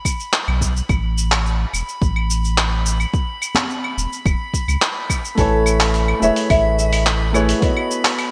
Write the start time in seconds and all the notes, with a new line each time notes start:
Already playing: B5
0.05 kick, claves, shaker
0.20 shaker
0.33 clap, shaker
0.48 B1, claves
0.61 kick, shaker
0.77 shaker
0.89 A1, kick, claves, shaker
1.18 shaker
1.32 clap, claves, shaker
1.46 shaker
1.73 E1, claves, shaker
1.89 shaker
2.02 A1, kick, shaker
2.16 claves
2.30 shaker
2.45 shaker
2.58 clap, claves, shaker
2.86 shaker
3.00 claves, shaker
3.14 kick, shaker
3.42 claves, shaker
3.55 clap, high conga, shaker
3.70 shaker
3.84 claves
3.98 E1, shaker
4.13 shaker
4.26 E1, kick, claves, shaker
4.54 kick, shaker
4.68 C#2, claves, shaker
4.82 clap, shaker
5.10 kick, claves, shaker
5.25 shaker
5.35 A1 A3 E4 A4 B4 G#5, kick, open hi-hat, shaker
5.40 C#5
5.66 claves, shaker
5.80 clap, open hi-hat, shaker
5.94 open hi-hat, shaker
6.08 claves
6.19 E1 A3 E4 G#4 B4 E5, shaker
6.24 C#5
6.36 open hi-hat, shaker
6.50 A1 E5, kick, open hi-hat, claves, shaker
6.79 E5, shaker
6.90 D#5, open hi-hat, claves, shaker
7.06 clap, open hi-hat, shaker
7.33 A3 E4 G#4 B4 C#5, claves, shaker
7.49 open hi-hat, shaker
7.59 B3 F#4 A4 C#5, kick, open hi-hat, shaker
7.64 D#5
7.77 claves
7.91 shaker
8.05 clap, open hi-hat, shaker
8.18 open hi-hat, claves, shaker